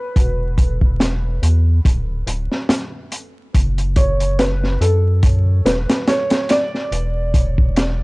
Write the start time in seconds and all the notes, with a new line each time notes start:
Already playing: B4
0.16 E1, kick, closed hi-hat
0.58 kick, closed hi-hat
0.81 kick
1.00 snare, closed hi-hat
1.42 E2, closed hi-hat
1.85 D1, kick, closed hi-hat
2.27 D1, closed hi-hat
2.52 snare
2.69 snare, closed hi-hat
3.12 closed hi-hat
3.54 F#1, kick, closed hi-hat
3.78 closed hi-hat
3.96 C#5, kick, closed hi-hat
4.20 closed hi-hat
4.39 B4, snare, closed hi-hat
4.64 snare
4.80 F#2 A4, closed hi-hat
5.23 kick, closed hi-hat
5.65 E1 B4, snare, closed hi-hat
5.90 snare, closed hi-hat
6.08 C#5, snare, closed hi-hat
6.30 snare, closed hi-hat
6.49 D5, snare, closed hi-hat
6.74 snare
6.91 E1, closed hi-hat
7.34 kick, closed hi-hat
7.58 kick
7.76 snare, closed hi-hat